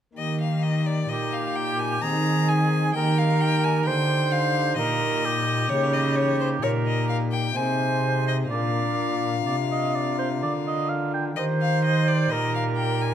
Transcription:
0.13 pipe organ A#3 D#4 G4
0.17 cello D#3, pipe organ D#3, violin D#5
0.41 violin F5
0.63 violin D#5
0.87 violin D5
1.09 cello A#2, pipe organ A#2, oboe G4, violin D#5
1.33 violin F5
1.56 violin G5
1.80 violin G#5
1.99 pipe organ C4 D#4 G#4, violin A#5
2.03 pipe organ D#3, cello D#3, oboe G#4
2.48 violin G#5
2.92 cello D#3, pipe organ A#3 D#4 G4, violin G5
2.96 pipe organ D#3, oboe A#4
3.18 violin F5
3.41 violin G5
3.64 violin G#5
3.85 cello D3, pipe organ D3, oboe C5, violin G5
4.32 violin F5
4.77 cello A#2, pipe organ A#2, oboe A#4, violin D#5
5.25 oboe G4
5.67 pipe organ A#3 D#4 G4, violin C#5
5.72 cello C#3, pipe organ C#3
5.94 violin D#5
6.16 violin C#5
6.41 violin C5
6.63 cello A#2, pipe organ A#2, oboe A#4, violin C#5
6.87 violin D#5
7.09 violin F5
7.32 violin G5
7.52 cello C3, pipe organ C4 D#4 G#4, oboe C5, violin G#5
7.57 pipe organ C3
8.28 violin D#5
8.45 pipe organ D4 F4 A#4
8.49 cello A#2, pipe organ A#2, oboe D5, violin F5
9.45 pipe organ C3, cello C3, oboe D5
9.71 oboe D#5
9.95 oboe D5
10.19 oboe C5
10.41 pipe organ D3, cello D3, oboe D5
10.67 oboe D#5
10.89 oboe F5
11.14 oboe G5
11.32 pipe organ D#4 G4 A#4, violin D#5
11.37 pipe organ D#3, cello D#3, oboe C5
11.61 violin F5
11.85 violin D#5
12.08 violin D5
12.30 pipe organ A#2, cello A#2, oboe A#4, violin D#5
12.55 violin F5
12.77 violin G5
13.01 violin G#5

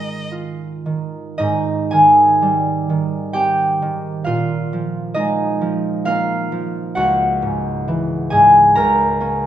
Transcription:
Already playing: harp G#2 D#3 G#3 F4, violin D#5
0.32 harp F4
0.86 harp D#3
1.38 harp G#2 D#4 D#5
1.91 harp D#3 G#4 G#5
2.42 harp G3
2.89 harp D#3
3.33 harp C4 G4 G5
3.82 harp D#3
4.24 harp A#2 F4 F5
4.73 harp F3
5.14 harp G#3 D#4 D#5
5.61 harp F3
6.05 harp A#3 F4 F5
6.52 harp F3
6.95 harp C#2 F#4 F#5
7.42 harp G#2
7.88 harp E3
8.30 harp G#2 G#4 G#5
8.75 harp C#2 A#4 A#5
9.20 harp A#3 C#4

